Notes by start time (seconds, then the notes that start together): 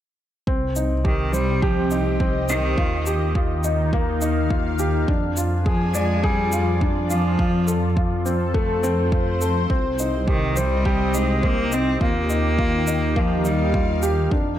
0.47 C2 C3 C4, kick
0.76 D#4, shaker
0.84 G4
1.03 D#3 C4 G4, kick
1.32 G3 C5, shaker
1.50 D#5
1.62 F3 G4, kick
1.91 D#4, shaker
2.20 C4, kick
2.49 D#3 D#4, shaker
2.77 D#2 D#3 F4, kick
3.05 D#4 G4, shaker
3.35 F4, kick
3.64 D#4, shaker
3.81 F5
3.93 A#3, kick
4.21 D#4, shaker
4.50 F4, kick
4.79 G4, shaker
5.07 F2 F3 D4, kick
5.24 F4
5.30 G#5
5.37 F4, shaker
5.44 D5
5.65 F3 G#4, kick
5.94 G#3 D5, shaker
6.23 G3 G#4, kick
6.52 F4, shaker
6.81 D4, kick
7.09 F3 F4, shaker
7.39 F2 F4, kick
7.67 A4, shaker
7.87 A4
7.97 F4, kick
8.25 C4, shaker
8.43 C5
8.54 A3, kick
8.83 C4, shaker
9.12 F4, kick
9.41 A4, shaker
9.70 C2 C3 C4, kick
9.99 D#4, shaker
10.11 C4
10.22 D#5
10.28 D#3 G4, kick
10.56 G3 C5, shaker
10.71 G4
10.85 G4, kick
11.14 G#3 D#4, shaker
11.43 A#3 C4, kick
11.72 C4 D#4, shaker
12.01 D#2 D#3 A#3 F4, kick
12.30 D#4, shaker
12.50 D#4
12.58 F4, kick
12.87 D#4, shaker
13.05 F5
13.16 F3 A#3, kick
13.45 G3 D#4, shaker
13.74 F4, kick
14.02 G4, shaker
14.31 F2 F3 D4, kick
14.42 F4
14.51 D5